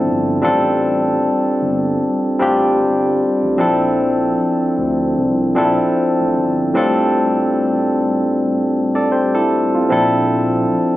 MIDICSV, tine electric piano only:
0, 0, Header, 1, 2, 480
1, 0, Start_track
1, 0, Key_signature, -1, "major"
1, 0, Tempo, 789474
1, 262, Time_signature, 4, 2, 24, 8
1, 6668, End_track
2, 0, Start_track
2, 0, Title_t, "Tine electric piano"
2, 0, Program_c, 0, 4
2, 0, Control_c, 0, 64, 127
2, 0, Note_on_c, 0, 53, 76
2, 0, Note_on_c, 0, 60, 73
2, 0, Note_on_c, 0, 62, 77
2, 0, Note_on_c, 0, 64, 76
2, 0, Note_on_c, 0, 69, 91
2, 222, Note_off_c, 0, 53, 0
2, 225, Note_off_c, 0, 60, 0
2, 227, Note_off_c, 0, 62, 0
2, 229, Note_off_c, 0, 64, 0
2, 232, Note_off_c, 0, 69, 0
2, 252, Note_on_c, 0, 55, 86
2, 256, Note_on_c, 0, 60, 75
2, 261, Note_on_c, 0, 62, 78
2, 267, Note_on_c, 0, 65, 76
2, 270, Control_c, 0, 64, 0
2, 271, Note_on_c, 0, 69, 94
2, 365, Control_c, 0, 64, 127
2, 1170, Note_off_c, 0, 55, 0
2, 1173, Note_off_c, 0, 60, 0
2, 1175, Note_off_c, 0, 62, 0
2, 1178, Note_off_c, 0, 65, 0
2, 1180, Note_off_c, 0, 69, 0
2, 1453, Note_on_c, 0, 55, 84
2, 1458, Note_on_c, 0, 60, 76
2, 1463, Note_on_c, 0, 62, 78
2, 1468, Note_on_c, 0, 65, 76
2, 1473, Note_on_c, 0, 67, 92
2, 2143, Note_off_c, 0, 55, 0
2, 2145, Note_off_c, 0, 60, 0
2, 2148, Note_off_c, 0, 62, 0
2, 2150, Note_off_c, 0, 65, 0
2, 2153, Note_off_c, 0, 67, 0
2, 2171, Note_on_c, 0, 53, 89
2, 2176, Note_on_c, 0, 60, 77
2, 2182, Note_on_c, 0, 62, 77
2, 2186, Note_on_c, 0, 64, 79
2, 2190, Control_c, 0, 64, 0
2, 2193, Note_on_c, 0, 69, 91
2, 2279, Control_c, 0, 64, 127
2, 3090, Note_off_c, 0, 53, 0
2, 3093, Note_off_c, 0, 60, 0
2, 3096, Note_off_c, 0, 62, 0
2, 3098, Note_off_c, 0, 64, 0
2, 3101, Note_off_c, 0, 69, 0
2, 3374, Note_on_c, 0, 53, 87
2, 3379, Note_on_c, 0, 60, 76
2, 3383, Note_on_c, 0, 62, 76
2, 3388, Note_on_c, 0, 64, 77
2, 3393, Note_on_c, 0, 69, 89
2, 4063, Note_off_c, 0, 53, 0
2, 4066, Note_off_c, 0, 60, 0
2, 4068, Note_off_c, 0, 62, 0
2, 4070, Note_off_c, 0, 64, 0
2, 4073, Note_off_c, 0, 69, 0
2, 4094, Note_on_c, 0, 45, 90
2, 4099, Note_on_c, 0, 55, 84
2, 4103, Note_on_c, 0, 60, 82
2, 4107, Note_on_c, 0, 62, 81
2, 4111, Control_c, 0, 64, 0
2, 4111, Note_on_c, 0, 65, 80
2, 4116, Note_on_c, 0, 69, 94
2, 4216, Control_c, 0, 64, 127
2, 5012, Note_off_c, 0, 45, 0
2, 5014, Note_off_c, 0, 55, 0
2, 5016, Note_off_c, 0, 60, 0
2, 5018, Note_off_c, 0, 62, 0
2, 5020, Note_off_c, 0, 65, 0
2, 5023, Note_off_c, 0, 69, 0
2, 5443, Note_on_c, 0, 74, 65
2, 5447, Note_on_c, 0, 69, 56
2, 5538, Note_off_c, 0, 74, 0
2, 5540, Note_off_c, 0, 69, 0
2, 5544, Note_on_c, 0, 72, 68
2, 5548, Note_on_c, 0, 67, 60
2, 5675, Note_off_c, 0, 72, 0
2, 5677, Note_off_c, 0, 67, 0
2, 5683, Note_on_c, 0, 69, 71
2, 5687, Note_on_c, 0, 64, 62
2, 5910, Note_off_c, 0, 69, 0
2, 5912, Note_off_c, 0, 64, 0
2, 5925, Note_on_c, 0, 65, 62
2, 5929, Note_on_c, 0, 60, 52
2, 6012, Note_off_c, 0, 60, 0
2, 6014, Note_on_c, 0, 53, 87
2, 6019, Note_on_c, 0, 60, 78
2, 6024, Note_on_c, 0, 62, 78
2, 6029, Note_on_c, 0, 64, 81
2, 6030, Control_c, 0, 64, 0
2, 6034, Note_on_c, 0, 69, 94
2, 6146, Control_c, 0, 64, 127
2, 6151, Note_off_c, 0, 65, 0
2, 6668, Note_off_c, 0, 53, 0
2, 6668, Note_off_c, 0, 60, 0
2, 6668, Note_off_c, 0, 62, 0
2, 6668, Note_off_c, 0, 64, 0
2, 6668, Note_off_c, 0, 69, 0
2, 6668, End_track
0, 0, End_of_file